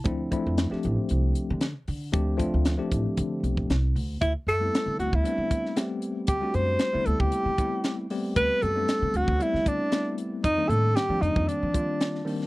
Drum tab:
HH |x-x-x-x-x-x-x-o-|x-x-x-x-x-x-x-o-|x-x-x-x-x-x-x-x-|x-x-x-x-x-x-x-o-|
SD |----oo------o---|----o-------o---|----o------oo---|----o-------o---|
BD |o-o-------------|o-o---o-o--o----|o------o--o-----|o------o--o-----|

HH |x-x-x-x-x-x-x-x-|x-x-x-x-x-x-x-o-|
SD |----o----o--o---|----o-------oo-o|
BD |o------o--o-----|o------o--o-----|